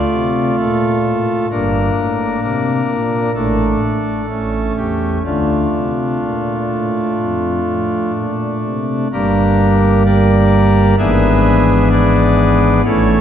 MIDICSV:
0, 0, Header, 1, 2, 480
1, 0, Start_track
1, 0, Key_signature, -1, "minor"
1, 0, Tempo, 925926
1, 779, Time_signature, 4, 2, 24, 8
1, 2223, Tempo, 967742
1, 4623, Tempo, 933126
1, 6723, End_track
2, 0, Start_track
2, 0, Title_t, "Pipe organ"
2, 0, Program_c, 0, 19
2, 0, Note_on_c, 0, 57, 56
2, 0, Note_on_c, 0, 65, 51
2, 0, Note_on_c, 0, 74, 113
2, 60, Note_on_c, 0, 48, 73
2, 265, Note_off_c, 0, 48, 0
2, 289, Note_off_c, 0, 74, 0
2, 306, Note_on_c, 0, 69, 110
2, 308, Note_on_c, 0, 46, 79
2, 508, Note_off_c, 0, 46, 0
2, 547, Note_on_c, 0, 45, 79
2, 747, Note_off_c, 0, 45, 0
2, 758, Note_off_c, 0, 57, 0
2, 758, Note_off_c, 0, 65, 0
2, 767, Note_off_c, 0, 69, 0
2, 781, Note_on_c, 0, 58, 48
2, 781, Note_on_c, 0, 62, 51
2, 782, Note_on_c, 0, 43, 72
2, 783, Note_on_c, 0, 31, 75
2, 784, Note_on_c, 0, 70, 97
2, 984, Note_off_c, 0, 43, 0
2, 985, Note_off_c, 0, 31, 0
2, 1022, Note_on_c, 0, 45, 80
2, 1224, Note_off_c, 0, 45, 0
2, 1246, Note_off_c, 0, 70, 0
2, 1261, Note_on_c, 0, 48, 73
2, 1261, Note_on_c, 0, 70, 94
2, 1462, Note_off_c, 0, 48, 0
2, 1498, Note_on_c, 0, 46, 69
2, 1700, Note_off_c, 0, 46, 0
2, 1714, Note_off_c, 0, 58, 0
2, 1714, Note_off_c, 0, 62, 0
2, 1721, Note_off_c, 0, 70, 0
2, 1735, Note_on_c, 0, 69, 104
2, 1736, Note_on_c, 0, 33, 73
2, 1737, Note_on_c, 0, 62, 55
2, 1738, Note_on_c, 0, 45, 72
2, 1738, Note_on_c, 0, 57, 55
2, 1940, Note_off_c, 0, 33, 0
2, 1941, Note_off_c, 0, 45, 0
2, 1969, Note_off_c, 0, 57, 0
2, 1980, Note_on_c, 0, 57, 67
2, 2187, Note_off_c, 0, 57, 0
2, 2208, Note_off_c, 0, 62, 0
2, 2223, Note_on_c, 0, 45, 66
2, 2224, Note_on_c, 0, 57, 45
2, 2225, Note_on_c, 0, 33, 68
2, 2225, Note_on_c, 0, 61, 48
2, 2426, Note_off_c, 0, 45, 0
2, 2427, Note_off_c, 0, 33, 0
2, 2441, Note_off_c, 0, 69, 0
2, 2461, Note_on_c, 0, 40, 59
2, 2464, Note_on_c, 0, 67, 80
2, 2666, Note_off_c, 0, 40, 0
2, 2668, Note_off_c, 0, 67, 0
2, 2689, Note_off_c, 0, 57, 0
2, 2690, Note_off_c, 0, 61, 0
2, 2699, Note_on_c, 0, 50, 57
2, 2699, Note_on_c, 0, 57, 39
2, 2700, Note_on_c, 0, 65, 68
2, 2701, Note_on_c, 0, 62, 37
2, 2702, Note_on_c, 0, 38, 51
2, 2907, Note_off_c, 0, 50, 0
2, 2909, Note_off_c, 0, 38, 0
2, 2944, Note_on_c, 0, 48, 48
2, 3151, Note_off_c, 0, 48, 0
2, 3188, Note_on_c, 0, 46, 52
2, 3393, Note_off_c, 0, 46, 0
2, 3431, Note_on_c, 0, 45, 50
2, 3633, Note_off_c, 0, 45, 0
2, 3665, Note_on_c, 0, 41, 57
2, 3868, Note_off_c, 0, 41, 0
2, 3908, Note_on_c, 0, 45, 55
2, 4109, Note_off_c, 0, 45, 0
2, 4122, Note_off_c, 0, 65, 0
2, 4148, Note_on_c, 0, 46, 55
2, 4349, Note_off_c, 0, 46, 0
2, 4385, Note_on_c, 0, 48, 51
2, 4585, Note_off_c, 0, 48, 0
2, 4598, Note_off_c, 0, 57, 0
2, 4599, Note_off_c, 0, 62, 0
2, 4621, Note_on_c, 0, 58, 49
2, 4622, Note_on_c, 0, 43, 64
2, 4623, Note_on_c, 0, 31, 59
2, 4623, Note_on_c, 0, 55, 51
2, 4624, Note_on_c, 0, 67, 60
2, 4624, Note_on_c, 0, 70, 88
2, 4625, Note_on_c, 0, 62, 68
2, 5088, Note_off_c, 0, 62, 0
2, 5088, Note_off_c, 0, 67, 0
2, 5088, Note_off_c, 0, 70, 0
2, 5101, Note_on_c, 0, 74, 94
2, 5102, Note_on_c, 0, 70, 72
2, 5104, Note_on_c, 0, 67, 66
2, 5556, Note_off_c, 0, 58, 0
2, 5557, Note_off_c, 0, 43, 0
2, 5558, Note_off_c, 0, 31, 0
2, 5558, Note_off_c, 0, 55, 0
2, 5563, Note_off_c, 0, 70, 0
2, 5563, Note_off_c, 0, 74, 0
2, 5564, Note_off_c, 0, 67, 0
2, 5577, Note_on_c, 0, 32, 66
2, 5577, Note_on_c, 0, 52, 61
2, 5578, Note_on_c, 0, 44, 70
2, 5578, Note_on_c, 0, 62, 59
2, 5578, Note_on_c, 0, 68, 85
2, 5578, Note_on_c, 0, 76, 103
2, 5579, Note_on_c, 0, 59, 56
2, 5579, Note_on_c, 0, 71, 80
2, 6044, Note_off_c, 0, 68, 0
2, 6044, Note_off_c, 0, 71, 0
2, 6044, Note_off_c, 0, 76, 0
2, 6054, Note_on_c, 0, 74, 100
2, 6058, Note_on_c, 0, 68, 74
2, 6058, Note_on_c, 0, 71, 82
2, 6518, Note_off_c, 0, 32, 0
2, 6518, Note_off_c, 0, 44, 0
2, 6518, Note_off_c, 0, 52, 0
2, 6518, Note_off_c, 0, 62, 0
2, 6519, Note_off_c, 0, 59, 0
2, 6522, Note_off_c, 0, 74, 0
2, 6524, Note_off_c, 0, 68, 0
2, 6524, Note_off_c, 0, 71, 0
2, 6540, Note_on_c, 0, 61, 51
2, 6540, Note_on_c, 0, 73, 89
2, 6541, Note_on_c, 0, 33, 57
2, 6541, Note_on_c, 0, 45, 62
2, 6541, Note_on_c, 0, 52, 47
2, 6541, Note_on_c, 0, 57, 53
2, 6541, Note_on_c, 0, 69, 67
2, 6542, Note_on_c, 0, 64, 66
2, 6723, Note_off_c, 0, 33, 0
2, 6723, Note_off_c, 0, 45, 0
2, 6723, Note_off_c, 0, 52, 0
2, 6723, Note_off_c, 0, 57, 0
2, 6723, Note_off_c, 0, 61, 0
2, 6723, Note_off_c, 0, 64, 0
2, 6723, Note_off_c, 0, 69, 0
2, 6723, Note_off_c, 0, 73, 0
2, 6723, End_track
0, 0, End_of_file